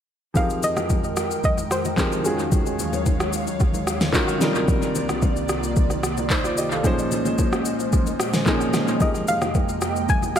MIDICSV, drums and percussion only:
0, 0, Header, 1, 2, 480
1, 0, Start_track
1, 0, Key_signature, -4, "minor"
1, 0, Tempo, 540541
1, 320, Time_signature, 4, 2, 24, 8
1, 9231, End_track
2, 0, Start_track
2, 0, Title_t, "Drums"
2, 317, Note_on_c, 9, 82, 85
2, 318, Note_on_c, 9, 64, 82
2, 319, Note_on_c, 9, 36, 115
2, 406, Note_off_c, 9, 82, 0
2, 407, Note_off_c, 9, 36, 0
2, 407, Note_off_c, 9, 64, 0
2, 444, Note_on_c, 9, 82, 54
2, 533, Note_off_c, 9, 82, 0
2, 559, Note_on_c, 9, 82, 91
2, 561, Note_on_c, 9, 61, 65
2, 648, Note_off_c, 9, 82, 0
2, 650, Note_off_c, 9, 61, 0
2, 681, Note_on_c, 9, 37, 82
2, 681, Note_on_c, 9, 61, 74
2, 682, Note_on_c, 9, 82, 55
2, 770, Note_off_c, 9, 37, 0
2, 770, Note_off_c, 9, 61, 0
2, 771, Note_off_c, 9, 82, 0
2, 796, Note_on_c, 9, 82, 63
2, 799, Note_on_c, 9, 60, 71
2, 799, Note_on_c, 9, 64, 73
2, 800, Note_on_c, 9, 36, 84
2, 885, Note_off_c, 9, 82, 0
2, 887, Note_off_c, 9, 60, 0
2, 887, Note_off_c, 9, 64, 0
2, 889, Note_off_c, 9, 36, 0
2, 924, Note_on_c, 9, 82, 45
2, 1013, Note_off_c, 9, 82, 0
2, 1035, Note_on_c, 9, 82, 87
2, 1038, Note_on_c, 9, 37, 90
2, 1124, Note_off_c, 9, 82, 0
2, 1127, Note_off_c, 9, 37, 0
2, 1164, Note_on_c, 9, 82, 52
2, 1253, Note_off_c, 9, 82, 0
2, 1277, Note_on_c, 9, 64, 75
2, 1278, Note_on_c, 9, 82, 68
2, 1281, Note_on_c, 9, 36, 109
2, 1366, Note_off_c, 9, 64, 0
2, 1367, Note_off_c, 9, 82, 0
2, 1370, Note_off_c, 9, 36, 0
2, 1403, Note_on_c, 9, 82, 57
2, 1404, Note_on_c, 9, 60, 52
2, 1492, Note_off_c, 9, 60, 0
2, 1492, Note_off_c, 9, 82, 0
2, 1518, Note_on_c, 9, 37, 91
2, 1522, Note_on_c, 9, 82, 96
2, 1606, Note_off_c, 9, 37, 0
2, 1610, Note_off_c, 9, 82, 0
2, 1641, Note_on_c, 9, 82, 59
2, 1645, Note_on_c, 9, 61, 69
2, 1730, Note_off_c, 9, 82, 0
2, 1734, Note_off_c, 9, 61, 0
2, 1756, Note_on_c, 9, 39, 93
2, 1756, Note_on_c, 9, 60, 76
2, 1757, Note_on_c, 9, 36, 85
2, 1760, Note_on_c, 9, 82, 69
2, 1844, Note_off_c, 9, 60, 0
2, 1845, Note_off_c, 9, 39, 0
2, 1846, Note_off_c, 9, 36, 0
2, 1849, Note_off_c, 9, 82, 0
2, 1884, Note_on_c, 9, 82, 57
2, 1973, Note_off_c, 9, 82, 0
2, 1998, Note_on_c, 9, 82, 98
2, 2087, Note_off_c, 9, 82, 0
2, 2123, Note_on_c, 9, 82, 49
2, 2211, Note_off_c, 9, 82, 0
2, 2238, Note_on_c, 9, 64, 83
2, 2238, Note_on_c, 9, 82, 88
2, 2239, Note_on_c, 9, 36, 115
2, 2327, Note_off_c, 9, 64, 0
2, 2327, Note_off_c, 9, 82, 0
2, 2328, Note_off_c, 9, 36, 0
2, 2365, Note_on_c, 9, 82, 55
2, 2453, Note_off_c, 9, 82, 0
2, 2480, Note_on_c, 9, 82, 96
2, 2481, Note_on_c, 9, 61, 65
2, 2569, Note_off_c, 9, 82, 0
2, 2570, Note_off_c, 9, 61, 0
2, 2601, Note_on_c, 9, 61, 75
2, 2604, Note_on_c, 9, 82, 54
2, 2690, Note_off_c, 9, 61, 0
2, 2693, Note_off_c, 9, 82, 0
2, 2718, Note_on_c, 9, 60, 74
2, 2718, Note_on_c, 9, 64, 72
2, 2718, Note_on_c, 9, 82, 67
2, 2721, Note_on_c, 9, 36, 88
2, 2806, Note_off_c, 9, 82, 0
2, 2807, Note_off_c, 9, 60, 0
2, 2807, Note_off_c, 9, 64, 0
2, 2809, Note_off_c, 9, 36, 0
2, 2844, Note_on_c, 9, 37, 97
2, 2845, Note_on_c, 9, 82, 47
2, 2933, Note_off_c, 9, 37, 0
2, 2934, Note_off_c, 9, 82, 0
2, 2956, Note_on_c, 9, 82, 91
2, 3045, Note_off_c, 9, 82, 0
2, 3084, Note_on_c, 9, 82, 53
2, 3172, Note_off_c, 9, 82, 0
2, 3197, Note_on_c, 9, 64, 75
2, 3198, Note_on_c, 9, 82, 65
2, 3201, Note_on_c, 9, 36, 113
2, 3286, Note_off_c, 9, 64, 0
2, 3286, Note_off_c, 9, 82, 0
2, 3289, Note_off_c, 9, 36, 0
2, 3323, Note_on_c, 9, 60, 52
2, 3323, Note_on_c, 9, 82, 55
2, 3412, Note_off_c, 9, 60, 0
2, 3412, Note_off_c, 9, 82, 0
2, 3437, Note_on_c, 9, 37, 90
2, 3441, Note_on_c, 9, 82, 95
2, 3526, Note_off_c, 9, 37, 0
2, 3530, Note_off_c, 9, 82, 0
2, 3560, Note_on_c, 9, 82, 59
2, 3561, Note_on_c, 9, 38, 67
2, 3565, Note_on_c, 9, 61, 68
2, 3649, Note_off_c, 9, 82, 0
2, 3650, Note_off_c, 9, 38, 0
2, 3653, Note_off_c, 9, 61, 0
2, 3676, Note_on_c, 9, 39, 88
2, 3676, Note_on_c, 9, 60, 72
2, 3677, Note_on_c, 9, 36, 87
2, 3680, Note_on_c, 9, 82, 69
2, 3764, Note_off_c, 9, 60, 0
2, 3765, Note_off_c, 9, 36, 0
2, 3765, Note_off_c, 9, 39, 0
2, 3769, Note_off_c, 9, 82, 0
2, 3804, Note_on_c, 9, 82, 58
2, 3893, Note_off_c, 9, 82, 0
2, 3918, Note_on_c, 9, 82, 100
2, 3919, Note_on_c, 9, 38, 69
2, 4007, Note_off_c, 9, 38, 0
2, 4007, Note_off_c, 9, 82, 0
2, 4043, Note_on_c, 9, 82, 49
2, 4132, Note_off_c, 9, 82, 0
2, 4158, Note_on_c, 9, 64, 87
2, 4158, Note_on_c, 9, 82, 85
2, 4159, Note_on_c, 9, 36, 116
2, 4246, Note_off_c, 9, 64, 0
2, 4247, Note_off_c, 9, 36, 0
2, 4247, Note_off_c, 9, 82, 0
2, 4284, Note_on_c, 9, 82, 57
2, 4373, Note_off_c, 9, 82, 0
2, 4399, Note_on_c, 9, 82, 91
2, 4401, Note_on_c, 9, 61, 66
2, 4488, Note_off_c, 9, 82, 0
2, 4490, Note_off_c, 9, 61, 0
2, 4521, Note_on_c, 9, 37, 82
2, 4521, Note_on_c, 9, 61, 71
2, 4522, Note_on_c, 9, 82, 54
2, 4610, Note_off_c, 9, 37, 0
2, 4610, Note_off_c, 9, 61, 0
2, 4611, Note_off_c, 9, 82, 0
2, 4636, Note_on_c, 9, 82, 64
2, 4638, Note_on_c, 9, 60, 73
2, 4638, Note_on_c, 9, 64, 72
2, 4640, Note_on_c, 9, 36, 87
2, 4725, Note_off_c, 9, 82, 0
2, 4727, Note_off_c, 9, 60, 0
2, 4727, Note_off_c, 9, 64, 0
2, 4729, Note_off_c, 9, 36, 0
2, 4763, Note_on_c, 9, 82, 48
2, 4852, Note_off_c, 9, 82, 0
2, 4874, Note_on_c, 9, 82, 85
2, 4878, Note_on_c, 9, 37, 88
2, 4963, Note_off_c, 9, 82, 0
2, 4966, Note_off_c, 9, 37, 0
2, 5004, Note_on_c, 9, 82, 52
2, 5092, Note_off_c, 9, 82, 0
2, 5116, Note_on_c, 9, 64, 77
2, 5118, Note_on_c, 9, 82, 69
2, 5121, Note_on_c, 9, 36, 112
2, 5205, Note_off_c, 9, 64, 0
2, 5207, Note_off_c, 9, 82, 0
2, 5210, Note_off_c, 9, 36, 0
2, 5243, Note_on_c, 9, 60, 55
2, 5243, Note_on_c, 9, 82, 55
2, 5332, Note_off_c, 9, 60, 0
2, 5332, Note_off_c, 9, 82, 0
2, 5358, Note_on_c, 9, 37, 93
2, 5362, Note_on_c, 9, 82, 97
2, 5447, Note_off_c, 9, 37, 0
2, 5451, Note_off_c, 9, 82, 0
2, 5481, Note_on_c, 9, 82, 61
2, 5484, Note_on_c, 9, 61, 68
2, 5570, Note_off_c, 9, 82, 0
2, 5573, Note_off_c, 9, 61, 0
2, 5595, Note_on_c, 9, 60, 73
2, 5596, Note_on_c, 9, 39, 94
2, 5597, Note_on_c, 9, 36, 86
2, 5600, Note_on_c, 9, 82, 70
2, 5684, Note_off_c, 9, 39, 0
2, 5684, Note_off_c, 9, 60, 0
2, 5686, Note_off_c, 9, 36, 0
2, 5689, Note_off_c, 9, 82, 0
2, 5724, Note_on_c, 9, 82, 57
2, 5813, Note_off_c, 9, 82, 0
2, 5839, Note_on_c, 9, 82, 99
2, 5928, Note_off_c, 9, 82, 0
2, 5963, Note_on_c, 9, 82, 50
2, 6052, Note_off_c, 9, 82, 0
2, 6077, Note_on_c, 9, 64, 84
2, 6078, Note_on_c, 9, 82, 87
2, 6079, Note_on_c, 9, 36, 114
2, 6166, Note_off_c, 9, 64, 0
2, 6167, Note_off_c, 9, 82, 0
2, 6168, Note_off_c, 9, 36, 0
2, 6205, Note_on_c, 9, 82, 59
2, 6294, Note_off_c, 9, 82, 0
2, 6319, Note_on_c, 9, 82, 92
2, 6320, Note_on_c, 9, 61, 65
2, 6408, Note_off_c, 9, 82, 0
2, 6409, Note_off_c, 9, 61, 0
2, 6441, Note_on_c, 9, 61, 72
2, 6443, Note_on_c, 9, 82, 56
2, 6530, Note_off_c, 9, 61, 0
2, 6532, Note_off_c, 9, 82, 0
2, 6557, Note_on_c, 9, 82, 69
2, 6558, Note_on_c, 9, 60, 75
2, 6558, Note_on_c, 9, 64, 70
2, 6560, Note_on_c, 9, 36, 84
2, 6646, Note_off_c, 9, 60, 0
2, 6646, Note_off_c, 9, 64, 0
2, 6646, Note_off_c, 9, 82, 0
2, 6649, Note_off_c, 9, 36, 0
2, 6684, Note_on_c, 9, 37, 95
2, 6685, Note_on_c, 9, 82, 44
2, 6773, Note_off_c, 9, 37, 0
2, 6773, Note_off_c, 9, 82, 0
2, 6796, Note_on_c, 9, 82, 87
2, 6885, Note_off_c, 9, 82, 0
2, 6925, Note_on_c, 9, 82, 49
2, 7014, Note_off_c, 9, 82, 0
2, 7037, Note_on_c, 9, 64, 75
2, 7039, Note_on_c, 9, 82, 65
2, 7041, Note_on_c, 9, 36, 117
2, 7126, Note_off_c, 9, 64, 0
2, 7128, Note_off_c, 9, 82, 0
2, 7130, Note_off_c, 9, 36, 0
2, 7163, Note_on_c, 9, 82, 59
2, 7164, Note_on_c, 9, 60, 53
2, 7252, Note_off_c, 9, 82, 0
2, 7253, Note_off_c, 9, 60, 0
2, 7278, Note_on_c, 9, 37, 97
2, 7282, Note_on_c, 9, 82, 97
2, 7367, Note_off_c, 9, 37, 0
2, 7371, Note_off_c, 9, 82, 0
2, 7401, Note_on_c, 9, 82, 61
2, 7402, Note_on_c, 9, 38, 64
2, 7406, Note_on_c, 9, 61, 69
2, 7490, Note_off_c, 9, 82, 0
2, 7491, Note_off_c, 9, 38, 0
2, 7495, Note_off_c, 9, 61, 0
2, 7516, Note_on_c, 9, 39, 88
2, 7517, Note_on_c, 9, 36, 89
2, 7517, Note_on_c, 9, 60, 74
2, 7520, Note_on_c, 9, 82, 71
2, 7605, Note_off_c, 9, 39, 0
2, 7606, Note_off_c, 9, 36, 0
2, 7606, Note_off_c, 9, 60, 0
2, 7609, Note_off_c, 9, 82, 0
2, 7644, Note_on_c, 9, 82, 56
2, 7733, Note_off_c, 9, 82, 0
2, 7758, Note_on_c, 9, 37, 91
2, 7758, Note_on_c, 9, 38, 65
2, 7758, Note_on_c, 9, 82, 95
2, 7847, Note_off_c, 9, 37, 0
2, 7847, Note_off_c, 9, 38, 0
2, 7847, Note_off_c, 9, 82, 0
2, 7883, Note_on_c, 9, 82, 52
2, 7972, Note_off_c, 9, 82, 0
2, 7998, Note_on_c, 9, 64, 83
2, 7998, Note_on_c, 9, 82, 89
2, 7999, Note_on_c, 9, 36, 118
2, 8087, Note_off_c, 9, 64, 0
2, 8087, Note_off_c, 9, 82, 0
2, 8088, Note_off_c, 9, 36, 0
2, 8124, Note_on_c, 9, 82, 55
2, 8213, Note_off_c, 9, 82, 0
2, 8240, Note_on_c, 9, 82, 93
2, 8242, Note_on_c, 9, 61, 66
2, 8329, Note_off_c, 9, 82, 0
2, 8330, Note_off_c, 9, 61, 0
2, 8362, Note_on_c, 9, 37, 86
2, 8362, Note_on_c, 9, 61, 74
2, 8363, Note_on_c, 9, 82, 57
2, 8451, Note_off_c, 9, 37, 0
2, 8451, Note_off_c, 9, 61, 0
2, 8452, Note_off_c, 9, 82, 0
2, 8477, Note_on_c, 9, 82, 63
2, 8479, Note_on_c, 9, 60, 69
2, 8479, Note_on_c, 9, 64, 72
2, 8480, Note_on_c, 9, 36, 84
2, 8565, Note_off_c, 9, 82, 0
2, 8568, Note_off_c, 9, 60, 0
2, 8568, Note_off_c, 9, 64, 0
2, 8569, Note_off_c, 9, 36, 0
2, 8603, Note_on_c, 9, 82, 45
2, 8692, Note_off_c, 9, 82, 0
2, 8715, Note_on_c, 9, 82, 85
2, 8719, Note_on_c, 9, 37, 91
2, 8804, Note_off_c, 9, 82, 0
2, 8808, Note_off_c, 9, 37, 0
2, 8845, Note_on_c, 9, 82, 52
2, 8934, Note_off_c, 9, 82, 0
2, 8958, Note_on_c, 9, 64, 74
2, 8959, Note_on_c, 9, 82, 65
2, 8961, Note_on_c, 9, 36, 112
2, 9046, Note_off_c, 9, 64, 0
2, 9048, Note_off_c, 9, 82, 0
2, 9050, Note_off_c, 9, 36, 0
2, 9083, Note_on_c, 9, 82, 59
2, 9084, Note_on_c, 9, 60, 53
2, 9172, Note_off_c, 9, 82, 0
2, 9173, Note_off_c, 9, 60, 0
2, 9198, Note_on_c, 9, 37, 99
2, 9203, Note_on_c, 9, 82, 96
2, 9231, Note_off_c, 9, 37, 0
2, 9231, Note_off_c, 9, 82, 0
2, 9231, End_track
0, 0, End_of_file